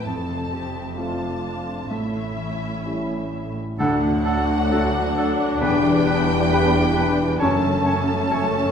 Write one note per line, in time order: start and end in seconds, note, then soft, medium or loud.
0.00 0.52 A3 soft
0.00 0.75 C4 soft
0.00 1.21 A4 soft
0.00 0.95 A5 soft
0.05 1.91 F1 soft
0.05 1.91 F2 soft
0.05 0.96 F2 soft
0.05 1.95 F2 soft
0.05 0.96 C4 soft
0.05 0.52 A4 medium
0.29 1.95 C3 soft
0.52 1.67 A3 soft
0.52 0.98 G4 soft
0.76 1.96 C4 soft
0.97 1.88 A3 soft
0.97 1.88 C4 soft
0.97 1.92 D4 soft
0.97 1.92 F4 soft
0.97 1.88 F4 soft
0.97 1.44 F4 soft
0.97 1.89 A5 soft
1.22 4.71 A4 soft
1.46 1.96 F4 soft
1.68 4.02 A3 soft
1.89 3.54 A1 soft
1.89 2.82 A2 soft
1.89 3.55 A2 soft
1.89 3.83 A2 soft
1.89 3.58 C#4 soft
1.89 3.57 E5 soft
1.93 3.59 E4 soft
2.15 3.83 E3 soft
2.38 3.54 G3 soft
2.62 3.83 C#4 soft
2.85 3.75 G3 soft
2.85 3.75 C#4 soft
2.85 3.31 E4 soft
2.85 3.75 E4 soft
3.09 3.83 G4 soft
3.32 3.82 E4 soft
3.56 3.83 G3 soft
3.78 5.58 D2 medium
3.78 4.69 D2 medium
3.78 5.58 D2 medium
3.78 5.66 D3 medium
3.78 5.58 F#3 medium
3.78 7.36 D4 medium
3.78 7.37 D4 medium
3.78 3.96 D4 medium
3.78 5.58 F#4 medium
3.78 3.95 A4 medium
3.78 5.58 F#5 medium
3.78 3.91 F#5 medium
4.03 5.66 A3 medium
4.26 4.42 D4 medium
4.26 5.38 D4 medium
4.26 4.42 A4 medium
4.26 4.38 F#5 medium
4.49 5.66 F#4 medium
4.71 5.58 A3 medium
4.71 4.87 D4 medium
4.71 5.59 D4 medium
4.71 5.59 F#4 medium
4.71 4.87 A4 medium
4.71 5.15 A4 medium
4.71 4.83 F#5 medium
4.94 6.73 D5 medium
5.15 5.31 D4 medium
5.15 5.66 A4 medium
5.15 5.33 A4 medium
5.19 5.29 F#5 medium
5.39 6.06 D4 medium
5.61 7.41 E1 medium
5.61 6.48 E2 medium
5.61 7.42 E2 medium
5.61 7.44 E3 medium
5.61 7.40 G3 medium
5.61 5.78 D4 medium
5.61 5.78 B4 medium
5.61 7.41 B4 medium
5.61 7.41 G5 medium
5.61 5.74 G5 medium
5.85 7.44 G3 medium
6.06 6.22 D4 medium
6.06 7.19 D4 medium
6.06 6.23 B4 medium
6.06 6.19 G5 medium
6.29 7.44 B4 medium
6.50 7.37 G3 medium
6.50 6.66 D4 medium
6.50 7.38 D4 medium
6.50 6.67 B4 medium
6.50 7.38 B4 medium
6.50 6.63 G5 medium
6.74 7.45 D5 medium
6.95 7.11 D4 medium
6.95 7.45 G4 medium
6.95 7.12 B4 medium
6.95 7.07 G5 medium
7.20 7.45 D4 soft
7.39 8.71 F#1 medium
7.39 8.71 F#2 medium
7.39 8.28 F#2 medium
7.39 8.71 F#2 medium
7.39 8.71 A3 medium
7.39 7.55 C#4 medium
7.39 8.71 C#4 medium
7.39 8.71 A4 medium
7.39 7.56 C#5 medium
7.39 7.50 A5 medium
7.39 8.71 A5 medium
7.64 8.71 C#3 medium
7.85 8.71 A3 medium
7.85 8.03 C#4 medium
7.85 8.02 C#5 medium
7.85 7.95 A5 medium
8.30 8.71 A3 medium
8.30 8.47 C#4 medium
8.30 8.71 C#4 medium
8.30 8.71 A4 medium
8.30 8.47 C#5 medium
8.30 8.40 A5 medium